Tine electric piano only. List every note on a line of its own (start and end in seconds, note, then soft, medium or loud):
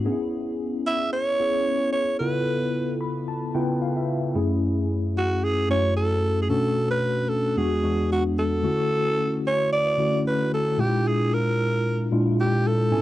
0.05 0.87 B3 medium
0.05 0.87 C#4 medium
0.05 0.13 D4 medium
0.05 0.87 G#4 loud
0.12 0.90 E4 medium
1.39 2.01 B3 medium
1.39 2.01 C#4 medium
1.39 2.02 E4 medium
1.39 2.02 G#4 medium
2.20 3.02 C#3 medium
2.20 3.02 B3 medium
2.20 3.02 E4 medium
2.20 3.02 F4 medium
2.20 3.02 A4 medium
3.01 3.26 B5 medium
3.28 3.53 A5 medium
3.54 4.16 C#3 medium
3.54 4.16 B3 medium
3.54 4.16 E4 medium
3.54 4.16 F4 medium
3.54 4.17 B4 medium
3.54 3.79 G5 medium
3.82 3.95 F5 medium
3.97 4.33 E5 medium
4.35 5.16 F#2 medium
4.35 5.16 A3 medium
4.35 5.17 C#4 medium
4.35 5.17 E4 medium
4.35 5.17 G#4 medium
5.69 6.31 F#2 medium
5.69 6.31 A3 medium
5.69 6.31 C#4 medium
5.69 6.31 E4 medium
5.69 6.31 F#4 medium
6.49 7.31 B2 medium
6.49 7.31 A3 medium
6.49 7.31 C#4 medium
6.49 7.31 D4 medium
6.49 7.31 F#4 medium
7.57 7.78 E2 medium
7.57 7.79 G#3 medium
7.57 7.79 B3 medium
7.57 7.79 D4 medium
7.57 7.79 F#4 medium
7.83 8.45 E2 medium
7.83 8.45 G#3 medium
7.83 8.45 B3 medium
7.83 8.45 D4 medium
7.83 8.46 F#4 medium
8.63 9.45 D3 medium
8.63 9.45 A3 medium
8.63 9.45 C#4 medium
8.63 9.46 E4 medium
8.63 9.46 F#4 medium
9.97 10.59 D3 medium
9.97 10.60 A3 medium
9.97 10.60 C#4 medium
9.97 10.60 E4 medium
9.97 10.60 F#4 medium
10.78 11.59 A#2 medium
10.78 11.60 G#3 medium
10.78 10.85 C4 medium
10.78 11.60 E4 medium
10.78 11.60 F4 medium
10.85 11.63 D4 medium
12.11 12.74 A#2 medium
12.11 12.74 G#3 medium
12.11 12.74 D4 medium
12.11 12.74 E4 medium
12.11 12.74 F4 medium
12.91 13.02 A2 medium
12.91 13.02 B3 medium
12.91 13.02 C#4 medium
12.91 13.02 E4 medium
12.91 13.02 G#5 medium